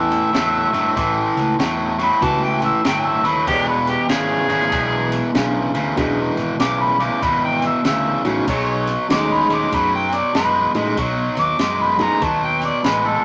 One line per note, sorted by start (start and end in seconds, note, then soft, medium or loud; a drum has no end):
0.00 0.19 E2 medium
0.00 0.29 A2 medium
0.00 0.29 E3 medium
0.00 1.56 E5 loud
0.12 snare soft
0.12 ride medium
0.33 0.64 E2 medium
0.33 0.69 A2 medium
0.33 0.69 F#3 medium
0.33 snare loud
0.33 ride medium
0.73 0.92 G2 medium
0.73 0.94 A2 medium
0.73 0.94 F#3 medium
0.73 snare soft
0.73 ride medium
0.96 1.27 A1 medium
0.96 1.55 A2 medium
0.96 1.55 E3 loud
0.96 kick loud
0.96 snare soft
0.96 ride medium
1.36 1.54 C#2 medium
1.36 snare soft
1.36 ride medium
1.59 2.08 E2 medium
1.59 1.95 A2 medium
1.59 1.95 F#3 medium
1.59 snare loud
1.59 ride medium
1.99 2.19 A2 medium
1.99 2.20 F#3 medium
1.99 2.24 B5 loud
1.99 snare soft
1.99 ride medium
2.21 2.70 C#2 medium
2.21 2.80 A2 medium
2.21 2.80 E3 medium
2.21 2.57 G3 soft
2.21 2.57 B3 soft
2.21 2.57 C#4 soft
2.21 2.58 E4 medium
2.21 2.58 F#4 medium
2.21 2.43 A5 medium
2.21 kick loud
2.21 snare soft
2.21 ride medium
2.43 2.63 G5 medium
2.62 2.84 E5 medium
2.62 snare soft
2.62 ride medium
2.85 3.15 G1 medium
2.85 3.20 A2 medium
2.85 3.20 F#3 medium
2.85 3.08 G5 medium
2.85 snare loud
2.85 ride medium
3.06 3.28 E5 loud
3.24 3.49 D#2 medium
3.24 3.45 A2 medium
3.24 3.45 F#3 medium
3.24 3.47 B4 medium
3.24 snare soft
3.24 ride medium
3.47 3.95 E1 medium
3.47 4.05 E2 medium
3.47 4.05 B2 medium
3.47 3.91 D4 medium
3.47 3.91 F#4 medium
3.47 3.67 G4 loud
3.47 3.92 G#4 medium
3.47 3.92 C#5 medium
3.47 kick loud
3.47 snare soft
3.47 ride medium
3.68 3.88 B4 medium
3.87 4.09 G4 loud
3.87 snare soft
3.87 ride medium
4.09 4.40 G#1 medium
4.09 4.45 E2 medium
4.09 4.45 C#3 medium
4.09 4.88 D4 medium
4.09 4.88 F#4 medium
4.09 5.31 G#4 loud
4.09 4.88 G#4 medium
4.09 4.88 C#5 loud
4.09 snare loud
4.09 ride loud
4.48 4.67 G#1 loud
4.48 4.70 E2 medium
4.48 4.70 C#3 medium
4.48 snare soft
4.48 ride medium
4.72 5.20 B1 medium
4.72 5.30 E2 medium
4.72 5.30 B2 medium
4.72 kick loud
4.72 snare soft
4.72 ride medium
5.12 snare soft
5.12 ride medium
5.33 5.66 B1 medium
5.33 5.70 E2 medium
5.33 5.71 C#3 medium
5.33 5.70 F#3 medium
5.33 5.70 B3 medium
5.33 5.70 C#4 medium
5.33 5.70 D4 medium
5.33 5.71 G#4 medium
5.33 snare loud
5.33 ride medium
5.74 5.92 D2 medium
5.74 5.95 E2 medium
5.74 5.95 C#3 medium
5.74 snare soft
5.74 ride medium
5.96 6.28 E1 medium
5.96 6.55 E2 loud
5.96 6.55 B2 medium
5.96 6.32 F#3 medium
5.96 6.33 B3 medium
5.96 6.33 C#4 medium
5.96 6.33 D4 medium
5.96 6.33 G#4 medium
5.96 kick loud
5.96 snare soft
5.96 ride medium
6.37 6.55 G#1 medium
6.37 snare soft
6.37 ride medium
6.60 7.08 B1 medium
6.60 6.95 E2 medium
6.60 6.96 C#3 loud
6.60 6.83 D6 loud
6.60 snare loud
6.60 ride medium
6.81 7.04 B5 medium
7.00 7.20 E2 medium
7.00 7.20 C#3 medium
7.00 7.25 D6 medium
7.00 snare soft
7.00 ride medium
7.22 7.71 G#1 medium
7.22 7.80 E2 medium
7.22 7.81 B2 medium
7.22 7.43 B5 medium
7.22 kick loud
7.22 snare soft
7.22 ride medium
7.44 7.64 G5 medium
7.62 7.85 E5 medium
7.62 snare soft
7.62 ride medium
7.85 8.16 D2 medium
7.85 8.21 E2 medium
7.85 8.21 C#3 medium
7.85 8.24 E5 loud
7.85 snare loud
7.85 ride medium
8.24 8.42 A1 medium
8.24 8.45 E2 medium
8.24 8.45 C#3 medium
8.24 8.45 F#3 medium
8.24 8.45 A3 medium
8.24 8.45 C#4 medium
8.24 8.45 D#4 medium
8.24 8.46 F#4 medium
8.24 snare soft
8.24 ride medium
8.47 8.96 B1 medium
8.47 9.06 B2 medium
8.47 9.06 F#3 medium
8.47 8.91 D#4 medium
8.47 8.92 G#4 medium
8.47 8.92 A4 medium
8.47 8.92 C#5 loud
8.47 kick loud
8.47 snare soft
8.47 ride medium
8.87 snare soft
8.87 ride medium
9.09 9.41 D#2 medium
9.09 9.46 B2 medium
9.09 10.04 F#3 medium
9.09 9.46 G#3 loud
9.09 10.04 A3 medium
9.09 10.04 C#4 medium
9.09 9.88 D#4 medium
9.09 10.04 D#4 medium
9.09 9.88 G#4 medium
9.09 10.04 G#4 medium
9.09 9.89 C#5 medium
9.09 9.34 D6 loud
9.09 snare loud
9.09 ride loud
9.32 9.52 B5 loud
9.49 9.67 D#2 medium
9.49 9.70 B2 medium
9.49 9.71 G#3 medium
9.49 snare soft
9.49 ride medium
9.53 9.76 D6 medium
9.72 10.21 F#2 medium
9.72 10.31 B2 medium
9.72 10.31 F#3 medium
9.72 9.94 B5 medium
9.72 kick loud
9.72 snare soft
9.72 ride medium
9.95 10.17 G5 medium
10.13 10.35 D5 medium
10.13 snare soft
10.13 ride medium
10.35 10.66 F#2 medium
10.35 10.71 B2 medium
10.35 10.71 G#3 medium
10.35 10.74 B4 loud
10.35 snare loud
10.35 ride medium
10.74 10.92 A2 medium
10.74 10.96 B2 medium
10.74 10.95 F#3 medium
10.74 10.96 G#3 medium
10.74 10.95 A3 medium
10.74 10.95 C#4 medium
10.74 10.95 D#4 medium
10.74 10.96 G#4 medium
10.74 snare soft
10.74 ride medium
10.97 11.28 B1 loud
10.97 11.56 B2 medium
10.97 11.56 F#3 loud
10.97 kick loud
10.97 snare soft
10.97 ride medium
11.37 11.55 D#2 medium
11.37 11.84 D6 loud
11.37 snare soft
11.37 ride medium
11.59 12.08 F#2 loud
11.59 11.96 B2 medium
11.59 11.96 G#3 loud
11.59 snare loud
11.59 ride medium
11.82 12.04 B5 medium
11.98 12.21 B2 medium
11.98 12.19 F#3 medium
11.98 12.21 G#3 medium
11.98 12.20 A3 medium
11.98 12.20 C#4 medium
11.98 12.20 D#4 medium
11.98 12.20 G#4 medium
11.98 snare soft
11.98 ride medium
12.02 12.24 A#5 medium
12.22 12.71 D#2 loud
12.22 12.80 B2 medium
12.22 12.80 F#3 medium
12.22 12.43 A5 medium
12.22 kick loud
12.22 snare soft
12.22 ride medium
12.44 12.64 G5 medium
12.62 12.87 D5 medium
12.62 snare soft
12.62 ride medium
12.84 13.15 A1 medium
12.84 13.20 B2 medium
12.84 13.21 G#3 medium
12.84 13.08 B4 medium
12.84 snare loud
12.84 ride medium
13.06 13.25 A4 medium